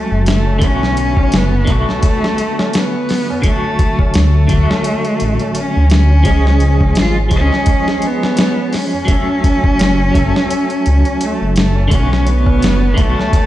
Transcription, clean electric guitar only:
0.00 0.56 F#3 medium
0.00 0.58 A3 medium
0.00 0.59 C#4 medium
0.00 0.60 A4 medium
0.59 1.63 D3 medium
0.59 1.64 A3 medium
0.64 1.65 B3 medium
0.64 1.66 F#4 loud
1.65 3.39 D3 medium
1.65 3.40 A3 medium
1.70 3.42 B3 medium
1.70 3.43 F#4 loud
3.42 4.45 D3 medium
3.42 4.47 F#3 medium
3.47 4.48 A3 medium
3.47 4.49 F#4 medium
4.47 6.22 D3 medium
4.47 6.23 F#3 medium
4.53 6.24 A3 medium
4.53 6.26 F#4 medium
6.23 7.27 F3 medium
6.23 7.28 G#3 medium
6.28 7.30 C#4 medium
6.28 7.31 G#4 medium
7.29 9.04 F3 medium
7.29 9.05 G#3 medium
7.33 9.06 C#4 medium
7.33 9.07 G#4 loud
9.05 10.09 F#3 medium
9.05 10.10 A3 medium
9.10 10.12 C#4 medium
9.10 10.13 A4 medium
10.11 11.86 F#3 medium
10.11 11.87 A3 medium
10.16 11.88 C#4 medium
10.16 11.90 A4 medium
11.88 12.92 D3 medium
11.88 12.93 A3 medium
11.93 12.94 B3 medium
11.93 12.96 F#4 medium
12.94 13.46 D3 medium
12.94 13.46 A3 medium
12.99 13.46 B3 medium
12.99 13.46 F#4 medium

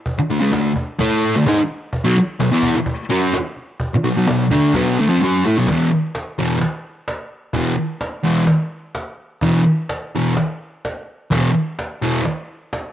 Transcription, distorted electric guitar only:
0.19 muted distorted electric guitar stroke medium
0.30 0.40 D3 medium
0.30 0.41 A3 medium
0.40 0.52 C#3 medium
0.40 0.52 G#3 loud
0.53 0.71 D3 medium
0.53 0.71 A3 medium
0.99 1.34 A3 medium
0.99 1.34 E4 medium
0.99 1.34 A4 medium
1.36 1.47 D3 medium
1.36 1.46 A3 medium
1.46 1.57 G#3 medium
1.46 1.58 D#4 loud
1.58 muted distorted electric guitar stroke medium
2.04 2.15 B2 medium
2.04 2.16 F#3 loud
2.17 muted distorted electric guitar stroke medium
2.40 2.52 B2 medium
2.40 2.51 F#3 medium
2.51 2.74 E3 medium
2.51 2.74 B3 medium
2.51 2.75 E4 loud
2.76 muted distorted electric guitar stroke medium
3.09 3.32 F#3 medium
3.09 3.32 C#4 loud
3.09 3.32 F#4 loud
3.94 muted distorted electric guitar stroke medium
4.04 4.15 B2 medium
4.04 4.15 F#3 medium
4.17 4.27 B2 medium
4.17 4.27 F#3 medium
4.28 4.46 B2 medium
4.28 4.46 F#3 medium
4.51 4.73 D3 medium
4.51 4.73 A3 loud
4.51 4.74 D4 loud
4.74 4.96 B2 medium
4.74 4.97 F#3 medium
4.74 4.97 B3 loud
5.00 5.09 D3 medium
5.00 5.09 A3 medium
5.09 5.19 F3 loud
5.09 5.20 C4 medium
5.22 5.44 F#3 medium
5.22 5.44 C#4 medium
5.22 5.45 F#4 loud
5.46 5.56 A3 medium
5.46 5.56 E4 medium
5.58 5.67 B2 medium
5.58 5.68 F#3 medium
5.72 5.88 E2 medium
5.72 5.88 B2 medium
5.72 5.89 E3 loud
6.38 6.56 E2 medium
6.38 6.57 B2 loud
6.38 6.57 E3 loud
7.54 7.73 E2 medium
7.54 7.74 B2 medium
7.54 7.73 E3 loud
8.24 8.43 E2 loud
8.24 8.44 B2 loud
8.24 8.44 E3 loud
9.43 9.61 E2 medium
9.43 9.61 B2 medium
9.43 9.62 E3 medium
10.16 10.33 E2 medium
10.16 10.33 B2 loud
10.16 10.33 E3 loud
11.31 11.49 E2 medium
11.31 11.50 B2 medium
11.31 11.50 E3 loud
12.02 12.20 E2 medium
12.02 12.20 B2 loud
12.02 12.21 E3 loud

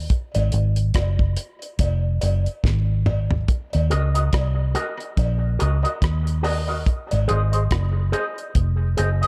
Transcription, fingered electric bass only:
0.36 0.52 G#1 medium
0.54 0.93 G#1 loud
0.95 1.35 F#1 medium
1.80 2.20 F1 medium
2.23 2.46 F#1 loud
2.65 3.45 G#1 loud
3.75 3.91 D#2 loud
3.93 4.32 C#2 loud
4.34 4.74 C2 medium
5.18 5.58 A#1 medium
5.62 5.84 C#2 medium
6.03 6.84 D#2 medium
7.13 7.29 G#1 medium
7.31 7.70 G#1 loud
7.72 8.12 F#1 medium
8.56 8.96 F1 medium
8.99 9.22 F#1 loud

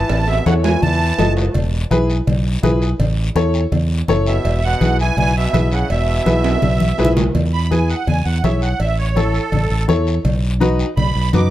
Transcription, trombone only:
0.00 0.26 E3 medium
0.28 0.45 B2 medium
0.46 0.54 C#3 medium
0.65 0.82 E3 medium
0.83 1.33 E3 medium
4.28 4.61 B2 medium
4.64 4.97 B2 medium
5.00 5.17 E3 medium
5.18 5.35 E3 medium
5.36 5.70 B2 medium
5.72 5.89 C#3 medium
5.91 7.13 B2 medium

